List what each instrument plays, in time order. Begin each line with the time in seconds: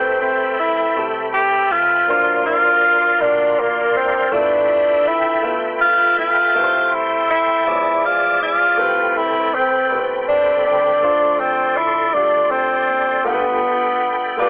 Already playing: upright bass C2, grand piano C3 A3 C4 G4 B4, tenor saxophone C4, tonewheel organ A4 E5 G5 B5
0.22 tenor saxophone C4
0.59 tenor saxophone E4
0.96 upright bass C2, grand piano A3 C4 G4 A4
1.33 tenor saxophone G4
1.71 upright bass C#2, tenor saxophone F4
2.07 upright bass D2, grand piano D3 F#3 A#3 D4 C5, tonewheel organ A#4 D5 F5 C6
2.46 tenor saxophone F4
3.19 upright bass D2, grand piano A#3 D4 F4 D5, tenor saxophone D4
3.27 grand piano F#4
3.60 tenor saxophone A#3
3.95 upright bass F#1, tenor saxophone C4
4.31 upright bass G1, grand piano G2 A3 E4 F4 A4, tenor saxophone D4, tonewheel organ A4 E5 G5 B5
4.40 grand piano B4
5.08 tenor saxophone E4
5.42 upright bass G1, grand piano A3 F4 B4 E5
5.81 tenor saxophone F4
6.18 upright bass B1, tenor saxophone F4
6.54 upright bass C2, grand piano C3 A3 G4 B4 E5, tonewheel organ G5 C6
6.63 grand piano C5
6.93 tenor saxophone E4
7.30 tenor saxophone E4
7.65 upright bass E2, grand piano E3 F3 G#3 C#5 E5, tonewheel organ G#4 D5 D6
7.75 grand piano D5
8.05 tenor saxophone F4
8.42 upright bass B1, tenor saxophone F4
8.77 upright bass C2, grand piano C3 A3 C4 G4 B4, tonewheel organ C4 A4 G5 B5
9.17 tenor saxophone E4
9.54 tenor saxophone C4
9.90 upright bass C2, grand piano A3 B3 G4 B4
9.97 grand piano C4
10.28 tenor saxophone D4
10.65 upright bass C#2, tenor saxophone D4
11.02 upright bass D2, grand piano D3 A3 D4 F4 C5, tonewheel organ D5 C6
11.40 tenor saxophone C4
11.77 tenor saxophone E4
12.13 upright bass D2, grand piano A3 D4 F4 G4, tenor saxophone D4
12.51 tenor saxophone C4
12.89 upright bass F#1
13.24 upright bass G1, grand piano G2 A3 F4 G4 A#4, tenor saxophone B3, tonewheel organ G5 B5
13.34 grand piano B4
14.37 upright bass G1, grand piano A3 F4 G4 D5, horn section F4 B4 D5